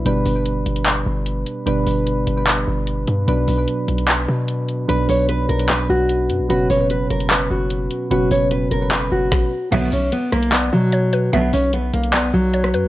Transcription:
<<
  \new Staff \with { instrumentName = "Synth pluck" } { \time 4/4 \key b \minor \tempo 4 = 149 r1 | r1 | r1 | r1 |
r1 | r1 | e''2 d''4 cis''8 b'8 | e''2 d''4 cis''8 b'8 | }
  \new Staff \with { instrumentName = "Nylon-string guitar" } { \time 4/4 \key b \minor r1 | r1 | r1 | b'8 cis''8 b'8 ais'8 b'8 fis'4. |
fis'8 cis''8 b'8 ais'8 b'8 fis'4. | fis'8 cis''8 b'8 ais'8 b'8 fis'4. | b8 cis'8 b8 ais8 b8 fis4. | b8 cis'8 b8 ais8 b8 fis4. | }
  \new Staff \with { instrumentName = "Synth keys" } { \time 4/4 \key b \minor <b, g d' b'>8. <b, g d' b'>4.~ <b, g d' b'>16 r4. | <b, g d' b'>4. r16 <b, g d' b'>4.~ <b, g d' b'>16 r8 | <b, fis d' b'>8. <b, fis d' b'>4.~ <b, fis d' b'>16 r4. | <b, fis d' b'>4. r16 <b, fis d' b'>4.~ <b, fis d' b'>16 r8 |
<b, fis cis' b'>8. <b, fis cis' b'>4.~ <b, fis cis' b'>16 r4. | <b, fis cis' b'>4. r16 <b, fis cis' b'>4.~ <b, fis cis' b'>16 r8 | r1 | r1 | }
  \new Staff \with { instrumentName = "String section" } { \clef bass \time 4/4 \key b \minor r1 | r1 | r1 | r1 |
r1 | r1 | <d, b, fis>8 r2. r8 | <d, b, fis>8 r2. r8 | }
  \new Staff \with { instrumentName = "808-style bass" } { \clef bass \time 4/4 \key b \minor g,,8 g,,4 g,,4 g,,4 r8 | g,,8 g,,4 g,,4 g,,4 g,8 | b,,8 b,,8 r8 b,,4 b,4. | b,,8 b,,4 b,,4 b,,4 fis,16 b,,16 |
fis,,8 fis,,4 fis,,4 fis,,4 r8 | fis,,8 fis,,4 fis,,4 fis,,8 r4 | b,,8 b,,8 r8 b,,4 b,4. | b,,8 b,,4 b,,4 b,,4 fis,16 b,,16 | }
  \new DrumStaff \with { instrumentName = "Drums" } \drummode { \time 4/4 hh8 hho8 hh8 hh16 hh16 <hc hh>4 hh8 hh8 | hh8 hho8 hh8 hh8 <hc hh>4 hh8 hh8 | hh8 hho8 hh8 hh16 hh16 <hc hh>4 hh8 hh8 | hh8 hho8 hh8 hh16 hh16 <hc hh>4 hh8 hh8 |
hh8 hho8 hh8 hh16 hh16 <hc hh>4 hh8 hh8 | hh8 hho8 hh8 hh8 <hc hh>4 <bd sn>4 | <cymc hh>8 hho8 hh8 <hh ss>16 hh16 <hc hh>4 hh8 hh8 | hh8 hho8 hh8 hh16 hh16 <hc hh>4 hh16 ss16 hh8 | }
>>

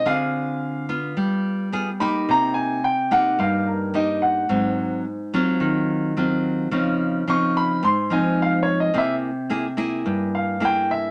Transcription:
<<
  \new Staff \with { instrumentName = "Grand piano" } { \time 4/4 \key c \phrygian \tempo 4 = 108 f''4. r2 b''8 | bes''8 aes''8 g''8 ges''8 f''8 bes'8 ees''8 ges''8~ | ges''4 r2. | r4 des'''8 b''8 c'''8 aes''8 \tuplet 3/2 { f''8 des''8 ees''8 } |
e''8 r2 f''8 g''8 e''8 | }
  \new Staff \with { instrumentName = "Nylon-string guitar" } { \time 4/4 \key c \phrygian << { <c' f' aes'>4. <b f'>4. <b f' aes'>8 <bes ees' g'>8~ | <bes ees' g'>4 r8 <bes ees' g'>4. <bes ees' g'>4 | <ges c'>4 r8 <ges c' f'>4. <ges c' f'>4 | <f c' ees'>4 <f c' ees'>4 r8 <f c' ees'>4. |
<bes e' aes'>8 r8 <bes e' aes'>8 <bes e' aes'>4. <bes e' aes'>4 | } \\ { d2 g2 | c2 g,2 | aes,2 ees2 | des2 aes,2 |
c2 g,2 | } >> }
>>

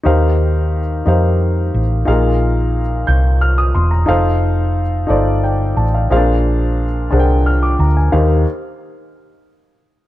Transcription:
<<
  \new Staff \with { instrumentName = "Upright piano" } { \time 6/8 \key ees \major \tempo 4. = 59 << { r2. | r4. g'''8 f'''16 ees'''16 c'''16 bes''16~ | bes''16 r4. r16 g''8 a''16 f''16~ | f''16 r4. r16 f'''16 d'''16 bes''16 aes''16~ |
aes''16 r2 r8. | } \\ { <ees' g' bes' c'' f''>4 r8 <ees' g' bes' c'' f''>4 r8 | <ees' f' aes' bes' f''>4 r2 | <ees' f' a' c'' f''>4 r8 <ees' f' a' c'' d''>4 r8 | <c' d' aes' bes' c'' f''>4 r8 <d' aes' bes' c'' ges'' g''>4 r8 |
<ees' g' bes' c'' f''>8 r2 r8 | } >> }
  \new Staff \with { instrumentName = "Upright piano" } { \clef bass \time 6/8 \key ees \major ees4. r4. | bes,4. r4. | r2. | bes,4. r4. |
ees,8 r2 r8 | }
  \new Staff \with { instrumentName = "Fingered electric bass" } { \clef bass \time 6/8 \key ees \major ees,4. f,4 a,,8 | bes,,4. c,4 fes,,8 | f,,4. g,,4 a,,8 | bes,,4. c,4 d,8 |
ees,8 r2 r8 | }
>>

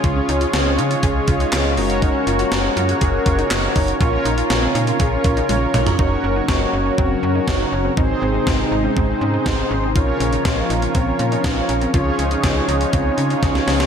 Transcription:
<<
  \new Staff \with { instrumentName = "Analog polysynth" } { \time 4/4 \key ges \lydian \tempo 4 = 121 <des' f' aes' des''>2.~ <des' f' aes' des''>8 <des' ges' bes' des''>8~ | <des' ges' bes' des''>1 | <des' f' bes' des''>1 | <des' ges' bes' des''>1 |
<c' ees' aes' c''>1 | <des' f' bes' des''>1 | <des' f' aes' des''>1 | }
  \new Staff \with { instrumentName = "Synth pluck" } { \time 4/4 \key ges \lydian f'16 des'16 ees'16 f'8 c'16 ees'16 f'16 aes'8 f'16 ees'16 f'8 ees'8 | ees'16 des'16 f'16 ges'8 des'16 f'16 ges'16 aes'8 f'16 ees'16 f'8 ees'8 | f'16 des'16 ees'16 f'8 c'16 ees'16 f'16 aes'8 f'16 ees'16 f'8 ees'8 | ees'8 des'16 ees'16 f'8 ees'16 des'16 c'8 des'16 ees'16 ees'8 des'16 c'16 |
ees'8 c'16 ees'16 f'8 ees'16 des'16 c'8 des'16 ees'16 ees'8 des'16 c'16 | f'8 des'16 ees'16 f'8 ees'16 des'16 c'8 des'16 ees'16 ees'8 des'16 c'16 | f'8 des'16 ees'16 f'8 ees'16 des'16 c'8 des'16 ees'16 ees'8 des'16 c'16 | }
  \new Staff \with { instrumentName = "Analog synth pad" } { \time 4/4 \key ges \lydian << { <des' f'>2.~ <des' f'>8 <bes ges'>8~ | <bes ges'>1 | <des' f'>1 | <bes ges'>1 |
<aes ees'>1 | <bes f'>1 | <aes ees'>1 | } \\ { <des aes>1~ | <des aes>1 | des1 | <des ges>1 |
<c ees>1 | <des f>1~ | <des f>1 | } >> }
  \new Staff \with { instrumentName = "FM bass" } { \clef bass \time 4/4 \key ges \lydian des,8 des,8 des,8 des8 des,8 des,8 des,8 ges,,8~ | ges,,8 ges,,8 ges,,8 ges,8 ges,,8 ges,,8 ges,,8 ges,,8 | bes,,8 bes,,8 bes,,8 bes,8 bes,,8 bes,,8 bes,,8 bes,,8 | ges,,8 ges,,8 ges,,8 ges,,8 ges,,8 ges,8 ges,,8 ges,,8 |
aes,,8 aes,,8 aes,,8 aes,,8 aes,,8 aes,8 aes,,8 aes,,8 | bes,,8 bes,,8 bes,,8 bes,,8 bes,,8 bes,8 bes,,8 bes,,8 | des,8 des,8 des,8 des,8 des,8 des8 des,8 des,8 | }
  \new DrumStaff \with { instrumentName = "Drums" } \drummode { \time 4/4 <hh bd>8 hh16 hh16 <hh sn>8 hh16 hh16 <hh bd>8 <hh bd>16 hh16 <hc hh sn>8 hho16 hh16 | <hh bd>8 hh16 hh16 <hh sn>8 hh16 hh16 <hh bd>8 <hh bd>16 hh16 <hc hh sn>8 <hho bd>16 hh16 | <hh bd>8 hh16 hh16 <hh sn>8 hh16 hh16 <hh bd>8 <hh bd>16 hh16 <hh tommh>8 <hh toml>16 <hh tomfh>16 | bd4 <bd sn>4 bd4 <bd sn>4 |
bd4 <bd sn>4 bd4 <bd sn>4 | <hh bd>8 hh16 hh16 <hh bd sn>8 hh16 hh16 <hh bd>8 hh16 hh16 <hh bd sn>8 hh16 hh16 | <hh bd>8 hh16 hh16 <hh bd sn>8 hh16 hh16 <hh bd>8 hh16 hh16 <hh bd sn>16 sn16 <hho sn>16 <hh sn>16 | }
>>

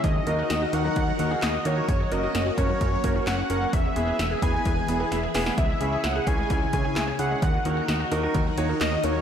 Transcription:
<<
  \new Staff \with { instrumentName = "Analog synth lead" } { \time 4/4 \key dis \phrygian \tempo 4 = 130 dis''4. fis''4. dis''8 cis''8~ | cis''8 dis''4 cis''4. fis''8 fis''8 | e''4. gis''2 r8 | e''4 fis''8 gis''4 gis''4 fis''8~ |
fis''4. r4. dis''8 cis''8 | }
  \new Staff \with { instrumentName = "Grand piano" } { \time 4/4 \key dis \phrygian << { r1 | r1 | r2. e''8 fis''8 | r1 |
r1 | } \\ { r8 <dis' fis' ais'>8 r8 <dis' fis' ais'>16 <dis' fis' ais'>8 r16 <dis' fis' ais'>16 <dis' fis' gis'>8 r16 <dis' fis' ais'>8 | r8 <cis' fis' ais'>8 r8 <cis' fis' ais'>16 <cis' fis' ais'>8 r16 <cis' fis' ais'>16 <cis' fis' ais'>8 r16 <cis' fis' ais'>8 | r8 <b e' gis'>8 r8 <b e' gis'>16 <b e' gis'>8 r16 <b e' gis'>16 <b e' gis'>8 r16 <b e' gis'>8 | r8 <cis' e' gis'>8 r8 <cis' e' gis'>16 <cis' e' gis'>8 r16 <cis' e' gis'>16 <cis' e' gis'>8 r16 <cis' e' gis'>8 |
r8 <dis' fis' ais'>8 r8 <dis' fis' ais'>16 <dis' fis' ais'>8 r16 <dis' fis' cis''>16 <dis' fis' ais'>8 r16 <dis' fis' ais'>8 | } >> }
  \new Staff \with { instrumentName = "String machine" } { \time 4/4 \key dis \phrygian << { <dis dis' ais'>1 | ais1 | <e e' b'>1 | <cis cis'>1 |
<dis dis' ais'>1 | } \\ { fis'1 | cis'1 | gis'1~ | gis'1 |
fis'1 | } >> }
  \new Staff \with { instrumentName = "Synth arpeggio sound" } { \time 4/4 \key dis \phrygian dis16 fis16 ais16 fis'16 dis''16 fis'16 ais16 fis16 dis16 fis16 ais16 fis'16 dis''16 fis'16 ais16 fis16 | cis16 fis16 ais16 fis'16 cis''16 fis'16 ais16 fis16 cis16 fis16 ais16 fis'16 cis''16 fis'16 ais16 fis16 | e16 gis16 b16 gis'16 e''16 gis'16 b16 gis16 e16 gis16 b16 gis'16 e''16 gis'16 b16 gis16 | e16 gis16 cis'16 gis'16 e''16 gis'16 cis'16 gis16 e16 gis16 cis'16 gis'16 e''16 gis'16 cis'16 gis16 |
dis16 fis16 ais16 fis'16 dis''16 fis'16 ais16 fis16 dis16 fis16 ais16 fis'16 dis''16 fis'16 ais16 fis16 | }
  \new Staff \with { instrumentName = "Analog synth bass" } { \clef bass \time 4/4 \key dis \phrygian dis,8 dis,8 dis,8 dis,8 dis,8 dis,8 dis,8 dis,8 | fis,,8 fis,,8 fis,,8 fis,,8 fis,,8 fis,,8 fis,,8 fis,,8 | e,,8 e,,8 e,,8 e,,8 e,,8 e,,8 e,,8 e,,8 | cis,8 cis,8 cis,8 cis,8 cis,8 cis,8 cis,8 cis,8 |
dis,8 dis,8 dis,8 dis,8 dis,8 dis,8 dis,8 dis,8 | }
  \new DrumStaff \with { instrumentName = "Drums" } \drummode { \time 4/4 <hh bd>8 hh8 <hh sn>8 hh8 <hh bd>8 hh8 <hc hh sn>8 hh8 | <hh bd>8 hh8 <hh sn>8 <hh bd>8 <hh bd>8 <hh bd>8 <hc hh sn>8 hh8 | <hh bd>8 hh8 <hh sn>8 <hh bd>8 <hh bd>8 hh8 <hh sn>8 <hho sn>16 sn16 | <hh bd>8 hh8 <hh sn>8 <hh bd>8 <hh bd>8 <hh bd>8 <hc hh sn>8 hh8 |
<hh bd>8 hh8 <hh sn>8 hh8 <hh bd>8 hh8 <hc hh sn>8 hh8 | }
>>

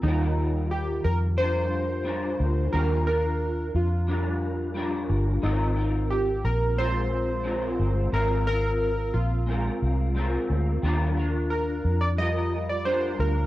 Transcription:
<<
  \new Staff \with { instrumentName = "Synth keys" } { \time 4/4 \key ees \major \tempo 4 = 89 ees'4 g'8 bes'8 c''2 | bes'8 bes'4 f'2 r8 | ees'4 g'8 bes'8 c''2 | bes'8 bes'4 f'2 r8 |
r4 bes'8. d''16 ees''8. d''16 c''8 bes'8 | }
  \new Staff \with { instrumentName = "Clean electric guitar" } { \time 4/4 \key ees \major <ees g f' bes'>2 <g d' f' bes'>4 <g d' f' bes'>4 | <ees g d' f' bes'>8 <d' f' bes'>4. <g d' f' bes'>4 <g d' f' bes'>4 | <aes c' f' bes'>8 <c' f' bes'>4. <aes c' f' bes'>4 <aes c' f' bes'>4 | <aes c' f' bes'>8 <c' f' bes'>4. <aes c' f' bes'>4 <aes c' f' bes'>4 |
<ees g d' f' bes'>8 <d' f' bes'>4. <g f' bes'>4 <g d' f' bes'>4 | }
  \new Staff \with { instrumentName = "Fingered electric bass" } { \clef bass \time 4/4 \key ees \major ees,4. f,2 d,8 | ees,4. f,2 g,,8 | aes,,4. bes,,2 g,,8 | aes,,4. bes,,4 c,4 d,8 |
ees,4. f,2 d,8 | }
>>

